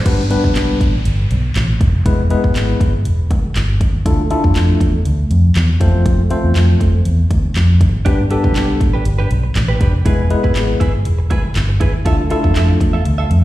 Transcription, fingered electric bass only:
0.06 G1
0.44 B1
0.56 B1
0.80 A1
1.06 G1
1.31 B1
1.56 A1
1.81 F1
2.06 E1
2.44 G#1
2.56 G#1
2.81 G1
3.06 E1
3.31 G#1
3.56 G1
3.81 D#2
4.06 D2
4.44 F2
4.56 F2
4.81 E2
5.06 D2
5.31 F2
5.56 E2
6.44 E2
6.56 F2
6.81 F2
7.05 E2
7.31 D2
7.56 F2
7.81 G#1
8.06 G1
8.44 B1
8.56 B1
8.80 A1
9.06 G1
9.31 B1
9.56 A1
9.81 F1
10.06 E1
10.44 G#1
10.55 G#1
10.80 G1
11.06 E1
11.31 G#1
11.56 G1
11.81 D#2
12.06 D2
12.44 F2
12.56 F2
12.81 E2
13.06 D2
13.31 F2

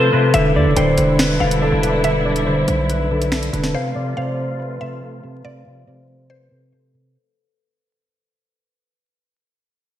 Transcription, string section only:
Already playing: C3 F3 A3 F4
0.34 B2 D3 G3 E4
3.74 C3 F3 A3 F4

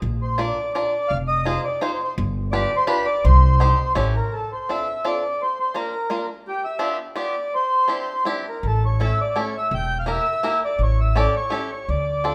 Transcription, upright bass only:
0.02 A#1
1.10 F1
2.18 G1
3.25 C2
3.96 A1
8.63 A1
9.71 E1
10.79 A1
11.89 D2

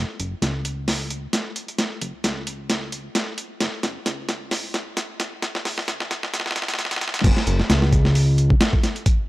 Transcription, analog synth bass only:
0.19 F#1
0.42 C#2
2.01 F#1
2.14 C#2
2.24 C#2
3.60 F#1
3.83 F#1
4.06 C#2
5.65 F#1
5.77 C#2
5.88 C#2
6.33 F#1
6.79 C#2
7.24 F#1
7.47 F#1
7.70 C#2

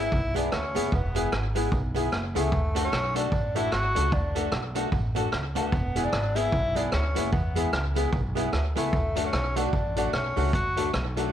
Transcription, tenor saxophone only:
Already playing: E4
0.36 D4
0.53 C#4
0.93 B3
2.36 A3
2.84 C#4
3.16 D4
3.56 E4
3.73 F#4
4.13 D4
5.57 B3
6.04 D4
6.35 E4
6.76 D4
6.93 C#4
7.33 B3
8.77 A3
9.25 C#4
9.57 D4
9.98 D4
10.14 C#4
10.54 F#4

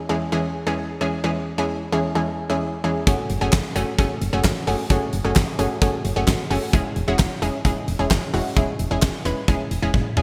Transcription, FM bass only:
3.07 F#1
3.30 F#1
3.41 F#1
3.53 F#1
3.76 F#1
3.98 F#1
4.21 F#1
4.33 F#1
4.44 G#1
4.67 F#1
4.90 F#1
5.13 F#1
5.24 F#1
5.36 F#1
5.59 F#1
5.82 F#1
6.05 F#1
6.16 F#1
6.28 G#1
6.50 F#1
6.73 E1
6.96 E1
7.08 E1
7.19 E1
7.42 E1
7.65 E1
7.88 E1
7.99 E1
8.11 F#1
8.34 E1
8.57 E1
8.79 E1
8.91 E1
9.03 E1
9.25 E1
9.48 E1
9.71 E1
9.82 E1
9.94 F#1
10.17 E1

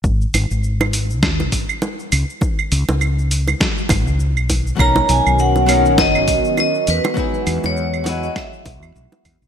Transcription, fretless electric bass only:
0.04 G#1
0.34 G#1
0.51 G#1
1.23 D#2
1.52 G#1
2.13 C#2
2.72 C#2
2.89 C#2
3.90 G#1
4.08 C#2
4.37 B1
4.79 B1
5.09 B1
5.26 B1
5.98 F#1
6.28 B1
6.88 E2
7.47 E2
7.64 E2
8.66 B1
8.82 E2
8.96 B1
9.25 E2
9.42 B1

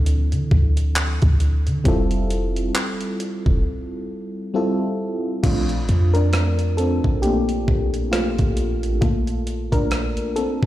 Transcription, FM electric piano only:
Already playing: F3 C4 D4 E4 A4
1.84 G3 C4 E4 F4 A4
4.54 G3 C4 E4 F4 A4
5.43 F3 A3 C4 D4 F4
6.14 D4 A#4
6.77 C4 A4
7.22 A3 A#3 C4 D4 G4
8.12 A3 F4
9.01 A3 A#3 F4 A4
9.72 D4 A#4
10.36 C4 A4

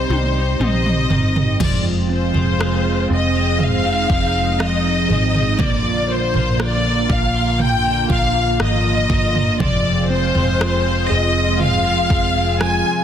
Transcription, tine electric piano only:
Already playing: C4 G4
0.60 C4
1.60 F3
2.10 C4
2.59 G#4
3.10 C4
3.59 G#4
4.09 F3
4.59 C4
5.09 G#4
5.59 A#3
6.09 F4
6.59 A#3
7.09 F4
7.59 A#3
8.09 F4
8.60 A#3
9.10 F4
9.60 F3
10.10 C4
10.60 F4
11.10 G#4
11.60 F4
12.10 G#4
12.60 F4

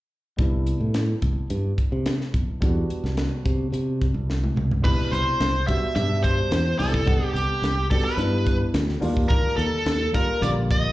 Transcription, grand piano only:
0.37 G3 B3 D4 E4
2.61 G3 B3 D4 F#4
4.82 B2 G3 D4 E4
5.67 G3 B3 D4 F#4
5.94 B2 G3 D4 G4
6.78 G3 B3 D4 E4
7.05 G3 B3 D4 F#5
7.90 G3 B3 D4 F#4
8.18 G3 B3 D4 E4
9.00 G3 A#3 D4 F4
10.13 G3 A#3 D4 F4
10.41 D3 G3 A#3 F4

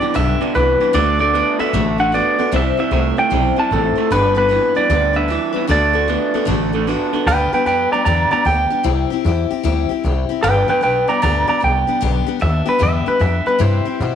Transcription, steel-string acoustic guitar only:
0.01 G3 B3 D4 G4
0.14 G2 D3 G3 B3 D4 G4
0.41 G3 B3 D4 G4
0.55 G3 B3 D4 G4
0.80 G3 B3 D4 G4
0.93 D3 A3 D4 F#4 A4
1.19 D4 F#4 A4
1.34 A3 D4 F#4 A4
1.59 D4 F#4 A4
1.73 D3 A3 D4 F#4 A4
1.98 D4 F#4 A4
2.12 A3 D4 F#4 A4
2.38 D4 F#4 A4
2.52 C3 G3 C4 E4 C5
2.77 C4 E4 C5
2.91 G3 C4 E4 C5
3.17 C4 E4 C5
3.30 C3 G3 C4 E4 C5
3.56 C4 E4 C5
3.71 G3 C4 E4 C5
3.96 C4 E4 C5
4.11 G2 D3 G3 B3 D4 B4
4.35 G3 B3 D4 B4
4.49 G3 B3 D4 B4
4.75 G3 B3 D4 B4
4.90 G2 D3 G3 B3 D4 B4
5.13 G3 B3 D4 B4
5.28 G3 B3 D4 B4
5.53 G3 B3 D4 B4
5.67 D3 A3 D4 F#4 A4
5.93 D4 F#4 A4
6.07 A3 D4 F#4 A4
6.34 D4 F#4 A4
6.45 D3 A3 D4 F#4 A4
6.73 D4 F#4 A4
6.87 A3 D4 F#4 A4
7.13 D4 F#4 A4
7.27 G2 D3 G3 B3 D4 G4
7.53 G3 B3 D4 G4
7.66 G3 B3 D4 G4
7.93 G3 B3 D4 G4
8.05 G2 D3 G3 B3 D4 G4
8.31 G3 B3 D4 G4
8.45 G3 B3 D4 G4
8.70 G3 B3 D4 G4
8.83 C3 G3 C4 E4 G4
9.10 C4 E4 G4
9.25 G3 C4 E4 G4
9.50 C4 E4 G4
9.63 C3 G3 C4 E4 G4
9.89 C4 E4 G4
10.04 G3 C4 E4 G4
10.29 C4 E4 G4
10.43 G2 D3 G3 B3 D4 G4
10.68 G3 B3 D4 G4
10.81 G3 B3 D4 G4
11.08 G3 B3 D4 G4
11.22 G2 D3 G3 B3 D4 G4
11.47 G3 B3 D4 G4
11.60 G3 B3 D4 G4
11.87 G3 B3 D4 G4
12.01 G2 D3 G3 B3 D4 G4
12.26 G3 B3 D4 G4
12.40 G3 B3 D4 G4
12.66 G3 B3 D4 G4
12.79 G2 D3 G3 B3 D4 G4
13.06 G3 B3 D4 G4
13.19 G3 B3 D4 G4
13.46 G3 B3 D4 G4
13.59 C3 G3 C4 E4 G4
13.85 C4 E4 G4
14.01 G3 C4 E4 G4

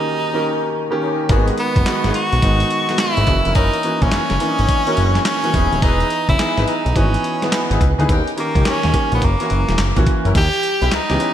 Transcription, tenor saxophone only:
Already playing: D#4
1.59 B3
2.15 F#4
3.00 E4
3.55 D#4
4.02 C#4
5.26 C#4
5.83 D#4
6.29 E4
6.68 D#4
6.97 C#4
7.44 B3
8.40 A#3
8.67 C#4
9.15 B3
9.25 A#3
10.37 G4
10.94 D#4

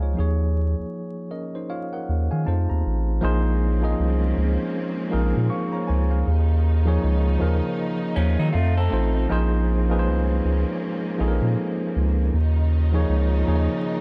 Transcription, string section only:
3.22 G#3 A#3 C4 C#4
6.25 C#3 D#3 F3 D#4
8.54 A3 C4
9.30 G#3 A#3 C#4
12.31 C#3 D#3 F3 D#4

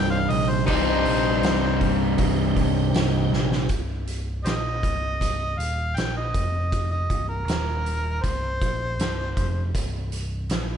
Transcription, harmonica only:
0.10 C5 F5
0.30 D#5
0.49 C5
0.66 D#4 G4 C5
4.45 G4 C5 D#5
5.58 F5
5.96 G5
6.17 D#5
6.91 D#5
7.29 A#4
8.23 C5

